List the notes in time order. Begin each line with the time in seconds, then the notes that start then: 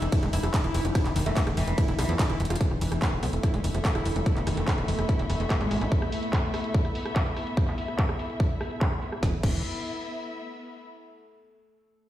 Already playing: E3 D#4 E4
0.02 E1, closed hi-hat
0.12 E4, kick, closed hi-hat, ride
0.23 E1 G#3, cross-stick, closed hi-hat
0.33 E1 E4, open hi-hat
0.43 E1 F3, cross-stick, closed hi-hat
0.54 kick, clap, closed hi-hat, ride
0.64 E1 E4, closed hi-hat
0.74 E1, cross-stick, open hi-hat
0.85 E1 E3, closed hi-hat
0.95 B3 E4, kick, cross-stick, closed hi-hat, ride
1.05 E1, clap, closed hi-hat
1.16 E1 D#3, open hi-hat
1.26 E1 A3, cross-stick, closed hi-hat
1.37 E3, kick, clap, closed hi-hat, ride
1.47 E1, cross-stick, closed hi-hat
1.57 E1 E3, open hi-hat
1.68 E1, closed hi-hat
1.78 E4, kick, cross-stick, closed hi-hat, ride
1.88 E1 E4, closed hi-hat
1.99 B1 E3, cross-stick, open hi-hat
2.09 E2 F3, closed hi-hat
2.19 F4, kick, clap, closed hi-hat, ride
2.30 E1 E4, cross-stick, closed hi-hat
2.40 E1, closed hi-hat
2.45 closed hi-hat
2.50 E1 F4, cross-stick, closed hi-hat
2.56 closed hi-hat
2.61 E3 A3 B3 A4, kick, closed hi-hat
2.71 E1, cross-stick
2.81 E1 E3 E4, open hi-hat
2.92 E1, cross-stick, closed hi-hat
3.02 B3, kick, clap, closed hi-hat
3.12 E1
3.23 B1 B3, cross-stick, open hi-hat
3.33 E1, closed hi-hat
3.37 E5
3.43 E4, kick, cross-stick, closed hi-hat
3.54 E1 G#3, closed hi-hat
3.64 E1, open hi-hat
3.74 E1 F3, cross-stick, closed hi-hat
3.80 B5
3.85 kick, clap, closed hi-hat
3.95 E1 E4, cross-stick, closed hi-hat
4.05 E1, open hi-hat
4.16 E1 E3, closed hi-hat
4.26 E4, kick, cross-stick, closed hi-hat
4.37 E1, clap, closed hi-hat
4.47 E1 D#3, cross-stick, open hi-hat
4.57 E1, closed hi-hat
4.68 E3, kick, clap, closed hi-hat
4.78 E1, cross-stick, closed hi-hat
4.88 E1 E3, open hi-hat
4.99 E1, cross-stick, closed hi-hat
5.09 E4, kick, closed hi-hat
5.19 E1 E4, closed hi-hat
5.30 E1, cross-stick, open hi-hat
5.40 E1 G#3, closed hi-hat
5.50 kick, cross-stick, clap, closed hi-hat
5.61 G#1 G#3, closed hi-hat
5.71 G#1, open hi-hat
5.81 G#1 E4, cross-stick, closed hi-hat
5.92 kick, closed hi-hat
6.02 cross-stick
6.12 open hi-hat
6.23 closed hi-hat
6.33 kick, cross-stick, clap, closed hi-hat
6.54 cross-stick, open hi-hat
6.64 closed hi-hat
6.74 kick, closed hi-hat
6.85 cross-stick, closed hi-hat
6.95 open hi-hat
7.05 cross-stick, closed hi-hat
7.16 kick, clap, closed hi-hat
7.26 closed hi-hat
7.37 cross-stick, open hi-hat
7.47 closed hi-hat
7.57 kick, cross-stick, closed hi-hat
7.68 clap, closed hi-hat
7.78 open hi-hat
7.88 cross-stick, closed hi-hat
7.99 kick, clap, closed hi-hat
8.09 cross-stick, closed hi-hat
8.19 open hi-hat
8.30 closed hi-hat
8.40 kick, cross-stick, closed hi-hat
8.50 closed hi-hat
8.61 cross-stick, open hi-hat
8.71 closed hi-hat
8.81 kick, clap, closed hi-hat
8.92 cross-stick, closed hi-hat
9.02 open hi-hat
9.12 cross-stick, closed hi-hat
9.23 E1 E3 B3, kick, snare
9.29 E4
9.35 E5
9.41 E1 E3 B5, kick, crash